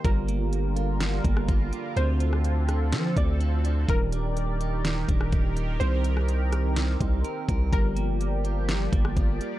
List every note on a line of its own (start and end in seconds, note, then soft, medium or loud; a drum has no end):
0.05 1.21 G1 loud
0.05 1.95 D3 medium
0.05 1.95 G3 medium
0.05 0.99 G3 medium
0.05 3.85 F4 medium
0.05 1.95 A#4 medium
0.05 0.97 A#4 loud
0.05 1.95 A#4 medium
0.05 kick loud
0.05 closed hi-hat medium
0.28 1.23 A#3 medium
0.28 closed hi-hat medium
0.53 closed hi-hat medium
0.76 1.48 F4 medium
0.76 closed hi-hat medium
1.00 1.96 G3 medium
1.00 snare loud
1.00 closed hi-hat medium
1.24 1.48 G1 loud
1.24 1.96 A#3 medium
1.24 kick medium
1.24 closed hi-hat medium
1.37 cross-stick loud
1.49 1.72 G1 loud
1.49 1.72 F4 medium
1.49 kick medium
1.49 closed hi-hat medium
1.73 1.97 F4 medium
1.73 closed hi-hat medium
1.96 2.94 D2 loud
1.96 3.87 D3 medium
1.96 2.92 D3 medium
1.96 3.87 C4 medium
1.96 3.87 A4 loud
1.96 3.13 C5 loud
1.96 5.77 D5 medium
1.96 closed hi-hat medium
2.20 3.15 C4 medium
2.20 closed hi-hat medium
2.33 cross-stick medium
2.45 closed hi-hat medium
2.69 3.39 D4 medium
2.69 cross-stick medium
2.69 closed hi-hat medium
2.93 3.89 D3 medium
2.93 3.15 F3 loud
2.93 snare loud
2.93 closed hi-hat medium
3.17 3.86 D2 loud
3.17 3.89 C4 medium
3.17 3.40 D5 medium
3.17 kick loud
3.17 closed hi-hat medium
3.40 3.63 D4 medium
3.40 closed hi-hat medium
3.64 3.88 D4 medium
3.64 closed hi-hat medium
3.88 5.05 D#1 loud
3.88 4.83 D#3 medium
3.88 7.69 D#3 medium
3.88 5.79 G3 medium
3.88 5.79 D#4 medium
3.88 7.69 G4 medium
3.88 9.59 A#4 medium
3.88 4.81 A#4 loud
3.88 5.79 D5 medium
3.88 kick loud
3.88 closed hi-hat medium
4.12 5.07 D4 medium
4.12 closed hi-hat medium
4.37 closed hi-hat medium
4.61 5.32 D#4 medium
4.61 closed hi-hat medium
4.85 5.81 D#3 medium
4.85 snare loud
4.85 closed hi-hat medium
5.09 5.32 D#1 loud
5.09 5.80 D4 medium
5.09 kick medium
5.09 closed hi-hat medium
5.21 cross-stick loud
5.32 5.79 D#1 loud
5.32 5.55 D#4 medium
5.32 kick medium
5.32 closed hi-hat medium
5.56 5.80 D#4 medium
5.56 closed hi-hat medium
5.80 6.97 C2 loud
5.80 7.71 A#3 medium
5.80 7.71 C4 medium
5.80 6.75 C4 loud
5.80 7.71 D#4 medium
5.80 6.72 C5 loud
5.80 7.71 C5 medium
5.80 closed hi-hat medium
6.04 6.99 D#4 medium
6.04 closed hi-hat medium
6.17 cross-stick medium
6.28 closed hi-hat medium
6.52 7.23 A#4 medium
6.52 cross-stick medium
6.52 closed hi-hat medium
6.76 7.73 C4 medium
6.76 snare loud
6.76 closed hi-hat medium
7.01 7.24 C2 loud
7.01 7.73 D#4 medium
7.01 kick loud
7.01 closed hi-hat medium
7.24 7.47 A#4 medium
7.24 closed hi-hat medium
7.49 7.72 C2 loud
7.49 7.73 A#4 medium
7.49 kick medium
7.49 closed hi-hat medium
7.72 8.89 G1 loud
7.72 9.59 F3 medium
7.72 9.59 G3 medium
7.72 8.67 G3 medium
7.72 9.59 F4 medium
7.72 9.59 G4 medium
7.72 8.65 A#4 loud
7.72 9.59 A#4 medium
7.72 9.59 D5 medium
7.72 kick loud
7.72 closed hi-hat medium
7.96 8.91 A#3 medium
7.96 closed hi-hat medium
8.21 closed hi-hat medium
8.44 9.16 F4 medium
8.44 closed hi-hat medium
8.68 9.59 G3 medium
8.68 snare loud
8.68 closed hi-hat medium
8.92 9.16 G1 loud
8.92 9.59 A#3 medium
8.92 kick loud
8.92 closed hi-hat medium
9.05 cross-stick loud
9.17 9.40 G1 loud
9.17 9.40 F4 medium
9.17 kick medium
9.17 closed hi-hat medium
9.41 9.59 F4 medium
9.41 closed hi-hat medium